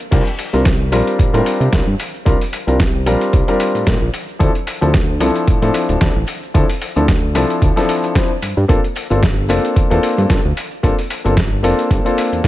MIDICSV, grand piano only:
0, 0, Header, 1, 2, 480
1, 0, Start_track
1, 0, Tempo, 535714
1, 108, Time_signature, 4, 2, 24, 8
1, 11179, End_track
2, 0, Start_track
2, 0, Title_t, "Grand piano"
2, 0, Program_c, 0, 0
2, 100, Note_on_c, 0, 55, 89
2, 102, Note_on_c, 0, 60, 83
2, 105, Note_on_c, 0, 62, 85
2, 108, Note_on_c, 0, 65, 86
2, 109, Note_on_c, 0, 70, 101
2, 189, Note_off_c, 0, 55, 0
2, 190, Note_off_c, 0, 60, 0
2, 191, Note_off_c, 0, 62, 0
2, 193, Note_off_c, 0, 65, 0
2, 194, Note_off_c, 0, 70, 0
2, 474, Note_on_c, 0, 55, 78
2, 477, Note_on_c, 0, 60, 72
2, 479, Note_on_c, 0, 62, 73
2, 480, Note_on_c, 0, 65, 73
2, 484, Note_on_c, 0, 70, 88
2, 546, Note_off_c, 0, 55, 0
2, 547, Note_off_c, 0, 60, 0
2, 548, Note_off_c, 0, 62, 0
2, 549, Note_off_c, 0, 65, 0
2, 551, Note_off_c, 0, 70, 0
2, 822, Note_on_c, 0, 55, 87
2, 822, Note_on_c, 0, 60, 81
2, 826, Note_on_c, 0, 62, 81
2, 828, Note_on_c, 0, 65, 81
2, 831, Note_on_c, 0, 70, 97
2, 1166, Note_off_c, 0, 55, 0
2, 1166, Note_off_c, 0, 60, 0
2, 1168, Note_off_c, 0, 62, 0
2, 1169, Note_off_c, 0, 65, 0
2, 1171, Note_off_c, 0, 70, 0
2, 1194, Note_on_c, 0, 55, 91
2, 1197, Note_on_c, 0, 60, 85
2, 1199, Note_on_c, 0, 62, 84
2, 1201, Note_on_c, 0, 65, 83
2, 1203, Note_on_c, 0, 70, 100
2, 1518, Note_off_c, 0, 55, 0
2, 1520, Note_off_c, 0, 60, 0
2, 1521, Note_off_c, 0, 62, 0
2, 1522, Note_off_c, 0, 65, 0
2, 1523, Note_off_c, 0, 70, 0
2, 1542, Note_on_c, 0, 55, 73
2, 1544, Note_on_c, 0, 60, 65
2, 1546, Note_on_c, 0, 62, 66
2, 1550, Note_on_c, 0, 65, 65
2, 1630, Note_off_c, 0, 55, 0
2, 1631, Note_off_c, 0, 60, 0
2, 1632, Note_off_c, 0, 62, 0
2, 1634, Note_off_c, 0, 65, 0
2, 2019, Note_on_c, 0, 55, 93
2, 2021, Note_on_c, 0, 60, 85
2, 2022, Note_on_c, 0, 62, 85
2, 2026, Note_on_c, 0, 65, 84
2, 2028, Note_on_c, 0, 70, 104
2, 2108, Note_off_c, 0, 55, 0
2, 2109, Note_off_c, 0, 60, 0
2, 2110, Note_off_c, 0, 62, 0
2, 2112, Note_off_c, 0, 65, 0
2, 2113, Note_off_c, 0, 70, 0
2, 2392, Note_on_c, 0, 55, 79
2, 2395, Note_on_c, 0, 60, 75
2, 2396, Note_on_c, 0, 62, 74
2, 2399, Note_on_c, 0, 65, 76
2, 2402, Note_on_c, 0, 70, 88
2, 2465, Note_off_c, 0, 55, 0
2, 2466, Note_off_c, 0, 60, 0
2, 2467, Note_off_c, 0, 62, 0
2, 2468, Note_off_c, 0, 65, 0
2, 2470, Note_off_c, 0, 70, 0
2, 2742, Note_on_c, 0, 55, 90
2, 2745, Note_on_c, 0, 60, 80
2, 2746, Note_on_c, 0, 62, 82
2, 2749, Note_on_c, 0, 65, 80
2, 2751, Note_on_c, 0, 70, 99
2, 3086, Note_off_c, 0, 55, 0
2, 3087, Note_off_c, 0, 60, 0
2, 3088, Note_off_c, 0, 62, 0
2, 3090, Note_off_c, 0, 65, 0
2, 3090, Note_off_c, 0, 70, 0
2, 3116, Note_on_c, 0, 55, 93
2, 3116, Note_on_c, 0, 60, 84
2, 3118, Note_on_c, 0, 62, 86
2, 3122, Note_on_c, 0, 65, 84
2, 3123, Note_on_c, 0, 70, 101
2, 3439, Note_off_c, 0, 55, 0
2, 3440, Note_off_c, 0, 60, 0
2, 3441, Note_off_c, 0, 62, 0
2, 3443, Note_off_c, 0, 65, 0
2, 3443, Note_off_c, 0, 70, 0
2, 3459, Note_on_c, 0, 55, 73
2, 3462, Note_on_c, 0, 60, 67
2, 3464, Note_on_c, 0, 62, 66
2, 3467, Note_on_c, 0, 65, 68
2, 3468, Note_on_c, 0, 70, 81
2, 3549, Note_off_c, 0, 55, 0
2, 3550, Note_off_c, 0, 60, 0
2, 3551, Note_off_c, 0, 62, 0
2, 3553, Note_off_c, 0, 65, 0
2, 3553, Note_off_c, 0, 70, 0
2, 3935, Note_on_c, 0, 53, 94
2, 3937, Note_on_c, 0, 60, 85
2, 3941, Note_on_c, 0, 62, 85
2, 3942, Note_on_c, 0, 64, 89
2, 3942, Note_on_c, 0, 69, 105
2, 4027, Note_off_c, 0, 53, 0
2, 4028, Note_off_c, 0, 60, 0
2, 4030, Note_off_c, 0, 62, 0
2, 4030, Note_off_c, 0, 64, 0
2, 4030, Note_off_c, 0, 69, 0
2, 4312, Note_on_c, 0, 53, 82
2, 4312, Note_on_c, 0, 60, 76
2, 4315, Note_on_c, 0, 62, 73
2, 4318, Note_on_c, 0, 64, 73
2, 4320, Note_on_c, 0, 69, 93
2, 4384, Note_off_c, 0, 53, 0
2, 4385, Note_off_c, 0, 60, 0
2, 4386, Note_off_c, 0, 62, 0
2, 4388, Note_off_c, 0, 64, 0
2, 4389, Note_off_c, 0, 69, 0
2, 4660, Note_on_c, 0, 53, 89
2, 4663, Note_on_c, 0, 60, 80
2, 4663, Note_on_c, 0, 62, 82
2, 4667, Note_on_c, 0, 64, 83
2, 4670, Note_on_c, 0, 69, 101
2, 5005, Note_off_c, 0, 53, 0
2, 5006, Note_off_c, 0, 60, 0
2, 5007, Note_off_c, 0, 62, 0
2, 5008, Note_off_c, 0, 64, 0
2, 5010, Note_off_c, 0, 69, 0
2, 5033, Note_on_c, 0, 53, 91
2, 5035, Note_on_c, 0, 60, 82
2, 5038, Note_on_c, 0, 62, 84
2, 5039, Note_on_c, 0, 64, 84
2, 5042, Note_on_c, 0, 69, 102
2, 5358, Note_off_c, 0, 53, 0
2, 5359, Note_off_c, 0, 60, 0
2, 5361, Note_off_c, 0, 62, 0
2, 5361, Note_off_c, 0, 64, 0
2, 5363, Note_off_c, 0, 69, 0
2, 5381, Note_on_c, 0, 53, 72
2, 5383, Note_on_c, 0, 60, 67
2, 5386, Note_on_c, 0, 62, 66
2, 5388, Note_on_c, 0, 64, 67
2, 5390, Note_on_c, 0, 69, 80
2, 5470, Note_off_c, 0, 53, 0
2, 5470, Note_off_c, 0, 60, 0
2, 5472, Note_off_c, 0, 62, 0
2, 5473, Note_off_c, 0, 64, 0
2, 5474, Note_off_c, 0, 69, 0
2, 5861, Note_on_c, 0, 53, 91
2, 5862, Note_on_c, 0, 60, 85
2, 5865, Note_on_c, 0, 62, 85
2, 5867, Note_on_c, 0, 64, 87
2, 5870, Note_on_c, 0, 69, 104
2, 5950, Note_off_c, 0, 53, 0
2, 5950, Note_off_c, 0, 60, 0
2, 5952, Note_off_c, 0, 62, 0
2, 5952, Note_off_c, 0, 64, 0
2, 5954, Note_off_c, 0, 69, 0
2, 6235, Note_on_c, 0, 53, 81
2, 6237, Note_on_c, 0, 60, 75
2, 6241, Note_on_c, 0, 62, 74
2, 6243, Note_on_c, 0, 64, 73
2, 6244, Note_on_c, 0, 69, 92
2, 6306, Note_off_c, 0, 53, 0
2, 6307, Note_off_c, 0, 60, 0
2, 6309, Note_off_c, 0, 62, 0
2, 6310, Note_off_c, 0, 64, 0
2, 6311, Note_off_c, 0, 69, 0
2, 6582, Note_on_c, 0, 53, 90
2, 6585, Note_on_c, 0, 60, 81
2, 6586, Note_on_c, 0, 62, 79
2, 6590, Note_on_c, 0, 64, 83
2, 6592, Note_on_c, 0, 69, 97
2, 6926, Note_off_c, 0, 53, 0
2, 6928, Note_off_c, 0, 60, 0
2, 6928, Note_off_c, 0, 62, 0
2, 6930, Note_off_c, 0, 64, 0
2, 6931, Note_off_c, 0, 69, 0
2, 6953, Note_on_c, 0, 53, 93
2, 6956, Note_on_c, 0, 60, 84
2, 6958, Note_on_c, 0, 62, 83
2, 6961, Note_on_c, 0, 64, 85
2, 6963, Note_on_c, 0, 69, 103
2, 7278, Note_off_c, 0, 53, 0
2, 7279, Note_off_c, 0, 60, 0
2, 7281, Note_off_c, 0, 62, 0
2, 7282, Note_off_c, 0, 64, 0
2, 7283, Note_off_c, 0, 69, 0
2, 7299, Note_on_c, 0, 53, 77
2, 7301, Note_on_c, 0, 60, 70
2, 7304, Note_on_c, 0, 62, 71
2, 7307, Note_on_c, 0, 64, 72
2, 7310, Note_on_c, 0, 72, 86
2, 7439, Note_off_c, 0, 53, 0
2, 7440, Note_off_c, 0, 60, 0
2, 7441, Note_off_c, 0, 62, 0
2, 7443, Note_off_c, 0, 64, 0
2, 7445, Note_off_c, 0, 72, 0
2, 7780, Note_on_c, 0, 58, 93
2, 7781, Note_on_c, 0, 60, 83
2, 7782, Note_on_c, 0, 62, 84
2, 7787, Note_on_c, 0, 69, 105
2, 7788, Note_on_c, 0, 65, 86
2, 7869, Note_off_c, 0, 58, 0
2, 7869, Note_off_c, 0, 60, 0
2, 7870, Note_off_c, 0, 62, 0
2, 7872, Note_off_c, 0, 69, 0
2, 7873, Note_off_c, 0, 65, 0
2, 8155, Note_on_c, 0, 58, 80
2, 8156, Note_on_c, 0, 60, 76
2, 8159, Note_on_c, 0, 62, 74
2, 8162, Note_on_c, 0, 65, 74
2, 8163, Note_on_c, 0, 69, 91
2, 8226, Note_off_c, 0, 58, 0
2, 8227, Note_off_c, 0, 60, 0
2, 8228, Note_off_c, 0, 62, 0
2, 8230, Note_off_c, 0, 65, 0
2, 8230, Note_off_c, 0, 69, 0
2, 8500, Note_on_c, 0, 58, 90
2, 8501, Note_on_c, 0, 60, 84
2, 8505, Note_on_c, 0, 62, 81
2, 8506, Note_on_c, 0, 65, 82
2, 8509, Note_on_c, 0, 69, 101
2, 8845, Note_off_c, 0, 58, 0
2, 8846, Note_off_c, 0, 60, 0
2, 8848, Note_off_c, 0, 62, 0
2, 8848, Note_off_c, 0, 65, 0
2, 8850, Note_off_c, 0, 69, 0
2, 8872, Note_on_c, 0, 58, 93
2, 8875, Note_on_c, 0, 60, 85
2, 8876, Note_on_c, 0, 62, 83
2, 8878, Note_on_c, 0, 65, 85
2, 8881, Note_on_c, 0, 69, 102
2, 9198, Note_off_c, 0, 58, 0
2, 9199, Note_off_c, 0, 60, 0
2, 9199, Note_off_c, 0, 62, 0
2, 9200, Note_off_c, 0, 65, 0
2, 9202, Note_off_c, 0, 69, 0
2, 9220, Note_on_c, 0, 58, 74
2, 9223, Note_on_c, 0, 60, 68
2, 9225, Note_on_c, 0, 62, 67
2, 9228, Note_on_c, 0, 65, 67
2, 9229, Note_on_c, 0, 69, 81
2, 9309, Note_off_c, 0, 58, 0
2, 9311, Note_off_c, 0, 60, 0
2, 9312, Note_off_c, 0, 62, 0
2, 9313, Note_off_c, 0, 65, 0
2, 9313, Note_off_c, 0, 69, 0
2, 9703, Note_on_c, 0, 58, 93
2, 9706, Note_on_c, 0, 60, 87
2, 9708, Note_on_c, 0, 62, 86
2, 9711, Note_on_c, 0, 65, 87
2, 9712, Note_on_c, 0, 69, 104
2, 9791, Note_off_c, 0, 58, 0
2, 9792, Note_off_c, 0, 60, 0
2, 9793, Note_off_c, 0, 62, 0
2, 9795, Note_off_c, 0, 65, 0
2, 9795, Note_off_c, 0, 69, 0
2, 10075, Note_on_c, 0, 58, 84
2, 10079, Note_on_c, 0, 60, 75
2, 10081, Note_on_c, 0, 62, 76
2, 10082, Note_on_c, 0, 65, 75
2, 10084, Note_on_c, 0, 69, 90
2, 10146, Note_off_c, 0, 58, 0
2, 10148, Note_off_c, 0, 60, 0
2, 10149, Note_off_c, 0, 62, 0
2, 10150, Note_off_c, 0, 65, 0
2, 10151, Note_off_c, 0, 69, 0
2, 10420, Note_on_c, 0, 58, 89
2, 10421, Note_on_c, 0, 60, 84
2, 10424, Note_on_c, 0, 62, 82
2, 10428, Note_on_c, 0, 65, 84
2, 10429, Note_on_c, 0, 69, 100
2, 10765, Note_off_c, 0, 58, 0
2, 10765, Note_off_c, 0, 60, 0
2, 10767, Note_off_c, 0, 62, 0
2, 10769, Note_off_c, 0, 65, 0
2, 10769, Note_off_c, 0, 69, 0
2, 10793, Note_on_c, 0, 58, 92
2, 10797, Note_on_c, 0, 60, 87
2, 10798, Note_on_c, 0, 62, 87
2, 10803, Note_on_c, 0, 65, 85
2, 10803, Note_on_c, 0, 69, 102
2, 11118, Note_off_c, 0, 58, 0
2, 11120, Note_off_c, 0, 60, 0
2, 11120, Note_off_c, 0, 62, 0
2, 11123, Note_off_c, 0, 65, 0
2, 11123, Note_off_c, 0, 69, 0
2, 11142, Note_on_c, 0, 58, 73
2, 11145, Note_on_c, 0, 60, 68
2, 11147, Note_on_c, 0, 62, 68
2, 11150, Note_on_c, 0, 65, 68
2, 11151, Note_on_c, 0, 69, 82
2, 11179, Note_off_c, 0, 58, 0
2, 11179, Note_off_c, 0, 60, 0
2, 11179, Note_off_c, 0, 62, 0
2, 11179, Note_off_c, 0, 65, 0
2, 11179, Note_off_c, 0, 69, 0
2, 11179, End_track
0, 0, End_of_file